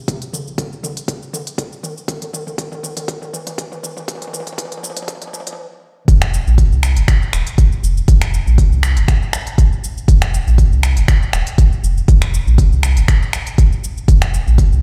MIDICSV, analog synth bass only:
0, 0, Header, 1, 2, 480
1, 0, Start_track
1, 0, Tempo, 500000
1, 80, Time_signature, 4, 2, 24, 8
1, 14230, End_track
2, 0, Start_track
2, 0, Title_t, "Analog synth bass"
2, 0, Program_c, 0, 38
2, 77, Note_on_c, 0, 29, 98
2, 382, Note_off_c, 0, 29, 0
2, 448, Note_on_c, 0, 34, 93
2, 607, Note_off_c, 0, 34, 0
2, 686, Note_on_c, 0, 36, 101
2, 927, Note_on_c, 0, 29, 89
2, 941, Note_off_c, 0, 36, 0
2, 1004, Note_off_c, 0, 29, 0
2, 1998, Note_on_c, 0, 29, 99
2, 2303, Note_off_c, 0, 29, 0
2, 2369, Note_on_c, 0, 34, 95
2, 2527, Note_off_c, 0, 34, 0
2, 2607, Note_on_c, 0, 36, 103
2, 2849, Note_on_c, 0, 29, 92
2, 2863, Note_off_c, 0, 36, 0
2, 2925, Note_off_c, 0, 29, 0
2, 3199, Note_on_c, 0, 27, 88
2, 3288, Note_off_c, 0, 27, 0
2, 3678, Note_on_c, 0, 29, 100
2, 3849, Note_off_c, 0, 29, 0
2, 3918, Note_on_c, 0, 29, 102
2, 4222, Note_off_c, 0, 29, 0
2, 4285, Note_on_c, 0, 34, 93
2, 4445, Note_off_c, 0, 34, 0
2, 4526, Note_on_c, 0, 36, 97
2, 4763, Note_on_c, 0, 29, 91
2, 4778, Note_off_c, 0, 36, 0
2, 4842, Note_off_c, 0, 29, 0
2, 5837, Note_on_c, 0, 29, 96
2, 6142, Note_off_c, 0, 29, 0
2, 6208, Note_on_c, 0, 34, 92
2, 6367, Note_off_c, 0, 34, 0
2, 6447, Note_on_c, 0, 36, 101
2, 6688, Note_on_c, 0, 29, 90
2, 6703, Note_off_c, 0, 36, 0
2, 6764, Note_off_c, 0, 29, 0
2, 7040, Note_on_c, 0, 27, 89
2, 7128, Note_off_c, 0, 27, 0
2, 7521, Note_on_c, 0, 29, 109
2, 7690, Note_off_c, 0, 29, 0
2, 7759, Note_on_c, 0, 29, 99
2, 8063, Note_off_c, 0, 29, 0
2, 8128, Note_on_c, 0, 34, 89
2, 8287, Note_off_c, 0, 34, 0
2, 8366, Note_on_c, 0, 36, 101
2, 8609, Note_on_c, 0, 29, 94
2, 8623, Note_off_c, 0, 36, 0
2, 8685, Note_off_c, 0, 29, 0
2, 9678, Note_on_c, 0, 29, 104
2, 9983, Note_off_c, 0, 29, 0
2, 10051, Note_on_c, 0, 34, 93
2, 10209, Note_off_c, 0, 34, 0
2, 10292, Note_on_c, 0, 36, 96
2, 10531, Note_on_c, 0, 29, 91
2, 10546, Note_off_c, 0, 36, 0
2, 10606, Note_off_c, 0, 29, 0
2, 10880, Note_on_c, 0, 27, 88
2, 10968, Note_off_c, 0, 27, 0
2, 11361, Note_on_c, 0, 29, 102
2, 11530, Note_off_c, 0, 29, 0
2, 11600, Note_on_c, 0, 29, 98
2, 11904, Note_off_c, 0, 29, 0
2, 11969, Note_on_c, 0, 34, 92
2, 12127, Note_off_c, 0, 34, 0
2, 12209, Note_on_c, 0, 36, 98
2, 12446, Note_on_c, 0, 29, 93
2, 12461, Note_off_c, 0, 36, 0
2, 12524, Note_off_c, 0, 29, 0
2, 13518, Note_on_c, 0, 29, 101
2, 13823, Note_off_c, 0, 29, 0
2, 13889, Note_on_c, 0, 34, 92
2, 14047, Note_off_c, 0, 34, 0
2, 14130, Note_on_c, 0, 36, 101
2, 14230, Note_off_c, 0, 36, 0
2, 14230, End_track
0, 0, End_of_file